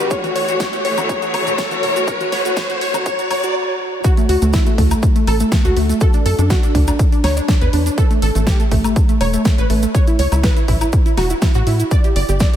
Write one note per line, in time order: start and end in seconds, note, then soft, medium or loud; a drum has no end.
0.00 3.51 F#4 medium
0.00 riser medium
0.11 3.52 E3 medium
0.11 3.52 A3 medium
0.11 3.52 C#5 loud
0.11 0.18 C#5 loud
0.11 kick loud
0.11 closed hi-hat loud
0.11 cabasa medium
0.24 0.30 F#4 medium
0.24 closed hi-hat soft
0.24 high conga medium
0.24 cabasa soft
0.36 0.43 C#5 medium
0.36 open hi-hat loud
0.48 0.55 F#4 medium
0.48 closed hi-hat soft
0.48 cabasa medium
0.60 0.67 C#5 loud
0.60 kick loud
0.60 snare loud
0.60 closed hi-hat loud
0.60 high conga medium
0.60 cabasa medium
0.73 0.80 F#4 medium
0.73 closed hi-hat soft
0.73 cabasa soft
0.85 0.92 C#5 medium
0.85 open hi-hat medium
0.98 1.04 F#4 medium
0.98 closed hi-hat soft
0.98 high conga medium
0.98 cabasa medium
0.98 high woodblock medium
1.09 1.17 C#5 loud
1.09 kick loud
1.09 closed hi-hat medium
1.09 cabasa medium
1.22 1.29 F#4 medium
1.22 closed hi-hat soft
1.22 cabasa soft
1.33 1.41 C#5 medium
1.33 open hi-hat loud
1.33 high conga medium
1.33 high woodblock medium
1.47 1.53 F#4 medium
1.47 closed hi-hat soft
1.47 low conga loud
1.47 cabasa medium
1.58 1.66 C#5 loud
1.58 kick loud
1.58 snare loud
1.58 closed hi-hat medium
1.58 cabasa medium
1.71 1.78 F#4 medium
1.71 closed hi-hat soft
1.71 high conga loud
1.71 cabasa soft
1.83 1.90 C#5 medium
1.83 open hi-hat medium
1.83 low conga loud
1.96 2.03 F#4 medium
1.96 closed hi-hat soft
1.96 cabasa medium
2.07 2.15 C#5 loud
2.07 kick loud
2.07 closed hi-hat loud
2.07 low conga medium
2.07 cabasa medium
2.20 2.27 F#4 medium
2.20 closed hi-hat soft
2.20 high conga loud
2.20 cabasa soft
2.32 2.40 C#5 loud
2.32 snare medium
2.32 open hi-hat loud
2.45 2.52 F#4 medium
2.45 closed hi-hat soft
2.45 cabasa medium
2.57 2.64 C#5 loud
2.57 kick loud
2.57 snare loud
2.57 closed hi-hat medium
2.57 high conga medium
2.57 cabasa medium
2.70 2.76 F#4 medium
2.70 closed hi-hat soft
2.70 cabasa soft
2.81 2.89 C#5 loud
2.81 open hi-hat loud
2.94 3.01 F#4 medium
2.94 closed hi-hat soft
2.94 high conga loud
2.94 cabasa medium
2.94 high woodblock medium
3.06 3.13 C#5 loud
3.06 kick loud
3.06 closed hi-hat loud
3.06 cabasa medium
3.19 3.26 F#4 medium
3.19 closed hi-hat soft
3.19 cabasa soft
3.30 3.38 C#5 loud
3.30 open hi-hat loud
3.30 high conga medium
3.30 low conga medium
3.30 high woodblock medium
3.43 3.50 F#4 medium
3.43 closed hi-hat soft
3.43 cabasa medium
4.04 4.12 F#4 loud
4.04 kick loud
4.04 closed hi-hat loud
4.04 cabasa medium
4.17 4.24 A3 medium
4.17 closed hi-hat soft
4.17 cabasa soft
4.29 4.38 D2 medium
4.29 4.36 F#4 medium
4.29 open hi-hat loud
4.42 4.58 D2 loud
4.42 4.48 A3 medium
4.42 closed hi-hat soft
4.42 cabasa medium
4.53 4.61 E4 medium
4.53 kick loud
4.53 snare loud
4.53 closed hi-hat loud
4.53 cabasa medium
4.66 4.73 A3 medium
4.66 closed hi-hat soft
4.66 cabasa soft
4.78 4.95 D2 loud
4.78 4.85 A3 medium
4.78 kick medium
4.78 open hi-hat medium
4.91 4.98 A3 medium
4.91 closed hi-hat soft
4.91 cabasa medium
4.91 high woodblock medium
5.03 kick loud
5.03 closed hi-hat loud
5.03 cabasa medium
5.16 5.22 A3 medium
5.16 closed hi-hat soft
5.16 cabasa soft
5.27 5.44 A1 loud
5.27 5.35 A4 loud
5.27 open hi-hat loud
5.27 high woodblock medium
5.40 5.47 A3 medium
5.40 closed hi-hat soft
5.40 cabasa medium
5.52 5.59 A3 medium
5.52 kick loud
5.52 snare loud
5.52 closed hi-hat loud
5.52 cabasa medium
5.65 5.73 D2 loud
5.65 5.71 F#4 medium
5.65 closed hi-hat soft
5.65 cabasa soft
5.77 5.93 D2 medium
5.77 5.84 A3 medium
5.77 open hi-hat medium
5.89 5.96 A3 medium
5.89 closed hi-hat soft
5.89 cabasa medium
6.01 6.08 A4 loud
6.01 kick loud
6.01 closed hi-hat loud
6.01 cabasa medium
6.13 6.21 D4 medium
6.13 closed hi-hat soft
6.13 cabasa soft
6.26 6.34 F#2 medium
6.26 6.33 A4 medium
6.26 open hi-hat loud
6.39 6.54 F#2 loud
6.39 6.45 D4 medium
6.39 closed hi-hat soft
6.39 cabasa medium
6.50 6.57 F#4 medium
6.50 kick loud
6.50 snare loud
6.50 closed hi-hat medium
6.50 cabasa medium
6.63 6.70 D4 medium
6.63 closed hi-hat soft
6.63 cabasa soft
6.75 6.92 D2 loud
6.75 6.82 D4 medium
6.75 kick medium
6.75 open hi-hat loud
6.87 6.94 D4 medium
6.87 closed hi-hat soft
6.87 cabasa medium
6.87 high woodblock medium
6.99 kick loud
6.99 closed hi-hat medium
6.99 cabasa medium
7.12 7.19 D4 medium
7.12 closed hi-hat soft
7.12 cabasa soft
7.24 7.41 D2 medium
7.24 7.31 C#5 medium
7.24 snare medium
7.24 open hi-hat loud
7.24 high woodblock medium
7.37 7.43 D4 medium
7.37 closed hi-hat soft
7.37 cabasa medium
7.48 7.56 D4 medium
7.48 kick loud
7.48 snare loud
7.48 closed hi-hat medium
7.48 cabasa medium
7.61 7.69 E2 medium
7.61 7.68 B4 medium
7.61 closed hi-hat soft
7.61 cabasa soft
7.73 7.90 E2 medium
7.73 7.80 D4 medium
7.73 open hi-hat loud
7.86 7.93 D4 medium
7.86 closed hi-hat soft
7.86 cabasa medium
7.98 8.05 A4 loud
7.98 kick loud
7.98 closed hi-hat medium
7.98 cabasa medium
8.11 8.17 A3 medium
8.11 closed hi-hat soft
8.11 cabasa soft
8.22 8.31 A1 loud
8.22 8.30 A4 medium
8.22 open hi-hat loud
8.35 8.51 A1 medium
8.35 8.42 A3 medium
8.35 closed hi-hat soft
8.35 cabasa medium
8.47 8.54 G4 medium
8.47 kick loud
8.47 snare loud
8.47 closed hi-hat medium
8.47 cabasa medium
8.60 8.66 A3 medium
8.60 closed hi-hat soft
8.60 cabasa soft
8.71 8.88 A1 loud
8.71 8.79 A3 medium
8.71 kick medium
8.71 open hi-hat loud
8.84 8.91 A3 medium
8.84 closed hi-hat soft
8.84 cabasa medium
8.84 high woodblock medium
8.96 kick loud
8.96 closed hi-hat medium
8.96 cabasa medium
9.09 9.16 A3 medium
9.09 closed hi-hat soft
9.09 cabasa soft
9.21 9.37 E1 loud
9.21 9.28 C#5 loud
9.21 open hi-hat loud
9.21 high woodblock medium
9.33 9.40 A3 medium
9.33 closed hi-hat soft
9.33 cabasa medium
9.45 9.53 A3 medium
9.45 kick loud
9.45 snare loud
9.45 closed hi-hat medium
9.45 cabasa medium
9.58 9.66 A1 loud
9.58 9.65 B4 loud
9.58 closed hi-hat soft
9.58 cabasa soft
9.70 9.87 A1 medium
9.70 9.77 A3 medium
9.70 open hi-hat loud
9.83 9.89 A3 medium
9.83 closed hi-hat soft
9.83 cabasa medium
9.95 10.02 C#5 medium
9.95 kick loud
9.95 closed hi-hat loud
9.95 cabasa medium
10.07 10.14 E4 medium
10.07 closed hi-hat soft
10.07 cabasa soft
10.19 10.28 C#2 medium
10.19 10.26 C#5 medium
10.19 open hi-hat loud
10.32 10.48 C#2 loud
10.32 10.39 E4 medium
10.32 closed hi-hat soft
10.32 cabasa medium
10.32 high woodblock medium
10.43 10.51 B4 loud
10.43 kick loud
10.43 snare loud
10.43 closed hi-hat medium
10.43 cabasa medium
10.56 10.63 E4 medium
10.56 closed hi-hat soft
10.56 cabasa soft
10.68 10.85 A1 loud
10.68 10.76 E4 medium
10.68 kick medium
10.68 open hi-hat loud
10.81 10.88 E4 medium
10.81 closed hi-hat soft
10.81 cabasa medium
10.81 high woodblock medium
10.92 kick loud
10.92 closed hi-hat medium
10.92 cabasa medium
11.06 11.12 E4 medium
11.06 closed hi-hat soft
11.06 cabasa soft
11.17 11.34 E1 loud
11.17 11.25 F#4 medium
11.17 snare medium
11.17 open hi-hat loud
11.17 high woodblock medium
11.30 11.37 E4 medium
11.30 closed hi-hat soft
11.30 cabasa medium
11.42 11.49 E4 medium
11.42 kick loud
11.42 snare loud
11.42 closed hi-hat medium
11.42 cabasa medium
11.54 11.63 A2 medium
11.54 11.62 F#4 medium
11.54 closed hi-hat soft
11.54 cabasa soft
11.67 11.83 A2 medium
11.67 11.74 E4 medium
11.67 open hi-hat loud
11.80 11.86 E4 medium
11.80 closed hi-hat soft
11.80 cabasa medium
11.91 11.99 D5 loud
11.91 kick loud
11.91 closed hi-hat medium
11.91 cabasa medium
12.04 12.11 G4 medium
12.04 closed hi-hat soft
12.04 cabasa soft
12.16 12.24 G1 loud
12.16 12.23 D5 medium
12.16 open hi-hat loud
12.29 12.45 G1 loud
12.29 12.35 G4 medium
12.29 closed hi-hat soft
12.29 cabasa medium
12.40 12.48 D5 medium
12.40 kick loud
12.40 snare loud
12.40 closed hi-hat medium
12.40 cabasa medium